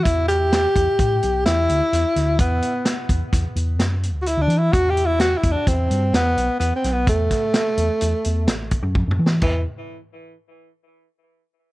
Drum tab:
CC |------------------------------|------------------------------|------------------------------|------------------------------|
HH |x--x--x--x--x--x--x--x--x--x--|x--x--x--x--x--x--x--x--x--x--|x--x--x--x--x--x--x--x--x--x--|x--x--x--x--x--x--x--x--------|
SD |------o-----------o-----o--o--|------o-----o-----o-----------|------o-----------o--------o--|---o--o-----------o---------o-|
T1 |------------------------------|------------------------------|------------------------------|------------------------o-----|
T2 |------------------------------|------------------------------|------------------------------|--------------------------o---|
BD |o--------o--o-----------------|o--------o--o-----------------|o--------o--o-----------------|o--o-----------------o--o-----|

CC |x-----------------------------|
HH |------------------------------|
SD |------------------------------|
T1 |------------------------------|
T2 |------------------------------|
BD |o-----------------------------|